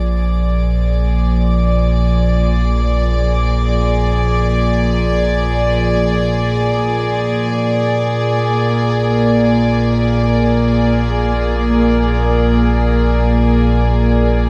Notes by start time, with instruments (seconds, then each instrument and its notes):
Already playing: analog synth bass A#1, string section A#2 F3 G#4 D5, synth texture D5 D6
7.48 analog synth bass A#1
8.35 string section A#3